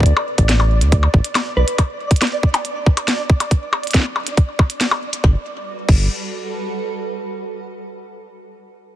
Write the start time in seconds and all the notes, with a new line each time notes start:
Already playing: D5
0.00 kick
0.03 D2, kick, closed hi-hat
0.17 percussion blips
0.38 A1, kick, closed hi-hat
0.49 snare, closed hi-hat
0.60 percussion blips
0.81 D2, closed hi-hat
0.92 kick, closed hi-hat
1.03 percussion blips
1.14 A1, kick
1.24 closed hi-hat
1.35 snare, closed hi-hat, percussion blips
1.57 B1 B4
1.68 closed hi-hat
1.78 kick, closed hi-hat, percussion blips
2.11 kick, closed hi-hat
2.16 closed hi-hat
2.22 snare, closed hi-hat, percussion blips
2.27 closed hi-hat
2.43 kick
2.54 closed hi-hat, percussion blips
2.65 closed hi-hat
2.86 kick
2.97 closed hi-hat, percussion blips
3.08 snare, closed hi-hat
3.30 kick
3.40 closed hi-hat, percussion blips
3.51 kick, closed hi-hat
3.73 percussion blips
3.83 closed hi-hat
3.87 closed hi-hat
3.91 snare, closed hi-hat
3.94 kick, snare, closed hi-hat
4.00 snare
4.02 snare
4.16 percussion blips
4.27 closed hi-hat
4.37 kick, closed hi-hat
4.59 kick, percussion blips
4.70 closed hi-hat
4.81 snare, closed hi-hat
4.91 percussion blips
5.13 closed hi-hat
5.24 G1 G3, kick, snare
5.30 F#4
5.37 A4
5.43 B4
5.89 G1, kick, crash